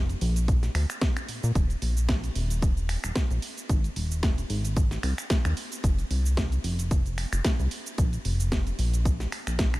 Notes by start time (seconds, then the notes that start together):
Already playing: F1
0.09 closed hi-hat, shaker
0.21 A#1, open hi-hat
0.36 closed hi-hat, shaker
0.48 kick, closed hi-hat, shaker
0.63 snare, closed hi-hat, shaker
0.75 D2, finger snap, open hi-hat
0.90 finger snap, shaker
1.01 kick, snare, closed hi-hat, shaker
1.17 finger snap, closed hi-hat, shaker
1.29 A#2, open hi-hat
1.43 A#2, closed hi-hat, shaker
1.55 D#1, kick, closed hi-hat, shaker
1.70 closed hi-hat, shaker
1.82 A#1, open hi-hat
1.97 shaker
2.09 kick, snare, closed hi-hat, shaker
2.24 closed hi-hat, shaker
2.35 D#1, open hi-hat
2.50 closed hi-hat, shaker
2.62 kick, closed hi-hat, shaker
2.77 closed hi-hat, shaker
2.89 finger snap, open hi-hat
3.04 D#1, finger snap, shaker
3.15 kick, snare, closed hi-hat, shaker
3.31 A#1, closed hi-hat, shaker
3.42 open hi-hat
3.57 closed hi-hat, shaker
3.69 G#1, kick, closed hi-hat, shaker
3.84 closed hi-hat, shaker
3.96 D#1, open hi-hat
4.12 shaker
4.23 kick, snare, closed hi-hat, shaker
4.38 closed hi-hat, shaker
4.50 G#1, open hi-hat
4.65 closed hi-hat, shaker
4.76 kick, closed hi-hat, shaker
4.91 snare, closed hi-hat, shaker
5.03 C2, finger snap, open hi-hat
5.18 finger snap, shaker
5.30 kick, snare, closed hi-hat, shaker
5.45 D#2, finger snap, closed hi-hat, shaker
5.57 open hi-hat
5.72 closed hi-hat, shaker
5.84 F1, kick, closed hi-hat, shaker
5.99 closed hi-hat, shaker
6.11 C2, open hi-hat
6.26 shaker
6.37 kick, snare, closed hi-hat, shaker
6.52 closed hi-hat, shaker
6.64 F1, open hi-hat
6.79 closed hi-hat, shaker
6.91 kick, closed hi-hat, shaker
7.06 closed hi-hat, shaker
7.18 finger snap, open hi-hat
7.33 F1, finger snap, shaker
7.44 kick, snare, closed hi-hat, shaker
7.59 C2, closed hi-hat, shaker
7.71 open hi-hat
7.86 closed hi-hat, shaker
7.98 A#1, kick, closed hi-hat, shaker
8.13 closed hi-hat, shaker
8.25 F1, open hi-hat
8.40 closed hi-hat, shaker
8.52 kick, snare, closed hi-hat, shaker
8.67 closed hi-hat, shaker
8.79 A#1, open hi-hat
8.94 closed hi-hat, shaker
9.05 kick, closed hi-hat, shaker
9.20 snare, closed hi-hat, shaker
9.32 finger snap, open hi-hat
9.47 A#1, finger snap, closed hi-hat, shaker
9.59 kick, snare, closed hi-hat, shaker
9.74 finger snap, closed hi-hat, shaker